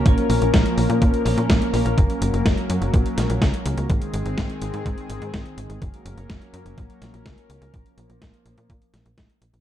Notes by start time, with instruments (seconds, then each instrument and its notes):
Already playing: analog synth pad A#3 C#4 A#4
0.05 analog synth bass A#1, analog synth pad F3, clean electric guitar A#3 C#4 F4 C#5, kick, closed hi-hat
0.18 closed hi-hat
0.30 analog synth bass A#1, open hi-hat
0.42 analog synth bass A#1, closed hi-hat
0.54 analog synth bass A#1, kick, snare, closed hi-hat
0.66 closed hi-hat
0.78 analog synth bass A#1, open hi-hat
0.90 analog synth bass A#2, closed hi-hat
1.02 analog synth bass A#2, kick, closed hi-hat
1.14 closed hi-hat
1.25 analog synth bass A#1, clean electric guitar A#3 C#4 F4 C#5, open hi-hat
1.38 analog synth bass A#2, closed hi-hat
1.50 analog synth bass A#1, kick, snare, closed hi-hat
1.62 closed hi-hat
1.73 analog synth bass A#1, clean electric guitar A#3 C#4 F4 C#5, open hi-hat
1.85 analog synth bass A#1, closed hi-hat
1.98 analog synth bass F#1, analog synth pad F#3, kick, closed hi-hat
2.10 closed hi-hat
2.22 analog synth bass F#1, closed hi-hat
2.34 analog synth bass F#1, closed hi-hat
2.46 analog synth bass F#1, kick, snare, closed hi-hat
2.58 closed hi-hat
2.70 analog synth bass F#2, closed hi-hat
2.82 analog synth bass F#1, closed hi-hat
2.94 analog synth bass A#1, kick, closed hi-hat
3.06 closed hi-hat
3.18 analog synth bass A#1, snare, closed hi-hat
3.30 analog synth bass A#1, closed hi-hat
3.42 analog synth bass C#2, kick, snare, closed hi-hat
3.54 closed hi-hat
3.66 analog synth bass C#2, closed hi-hat
3.78 analog synth bass C#2, closed hi-hat
3.90 analog synth bass G#1, analog synth pad D#3 G#3 C4 G#4, kick, closed hi-hat
4.02 closed hi-hat
4.14 analog synth bass G#1, closed hi-hat
4.26 analog synth bass G#1, closed hi-hat
4.38 analog synth bass G#1, kick, snare, closed hi-hat
4.50 closed hi-hat
4.62 analog synth bass G#1, closed hi-hat
4.74 analog synth bass G#2, closed hi-hat
4.86 analog synth bass G#2, kick, closed hi-hat
4.98 closed hi-hat
5.10 analog synth bass G#1, closed hi-hat
5.22 analog synth bass G#2, closed hi-hat
5.34 analog synth bass G#1, kick, snare, closed hi-hat
5.46 closed hi-hat
5.58 analog synth bass G#1, closed hi-hat
5.70 analog synth bass G#1, closed hi-hat
5.82 analog synth bass F#1, analog synth pad F#3 A#3 C#4 A#4, kick, closed hi-hat
5.94 closed hi-hat
6.05 analog synth bass F#1, closed hi-hat
6.17 analog synth bass F#1, closed hi-hat
6.30 analog synth bass F#1, kick, snare, closed hi-hat
6.42 closed hi-hat
6.54 analog synth bass F#2, closed hi-hat
6.66 analog synth bass F#1, closed hi-hat
6.78 analog synth bass A#1, kick, closed hi-hat
6.90 closed hi-hat
7.02 analog synth bass A#1, snare, closed hi-hat
7.14 analog synth bass A#1, closed hi-hat
7.26 analog synth bass C#2, kick, snare, closed hi-hat
7.38 closed hi-hat
7.50 analog synth bass C#2, closed hi-hat
7.62 analog synth bass C#2, closed hi-hat
7.74 analog synth bass A#1, analog synth pad F3 A#3, kick, closed hi-hat
7.86 closed hi-hat
7.98 analog synth bass A#1, closed hi-hat
8.10 analog synth bass A#1, closed hi-hat
8.22 analog synth bass A#1, kick, snare, closed hi-hat
8.34 closed hi-hat
8.46 analog synth bass A#1, closed hi-hat
8.58 analog synth bass A#2, closed hi-hat
8.70 analog synth bass A#2, kick, closed hi-hat
8.82 closed hi-hat
8.94 analog synth bass A#1, snare, closed hi-hat
9.06 analog synth bass A#1, closed hi-hat
9.18 analog synth bass A#1, kick, snare, closed hi-hat
9.30 closed hi-hat
9.42 analog synth bass A#1, closed hi-hat
9.54 analog synth bass A#1, closed hi-hat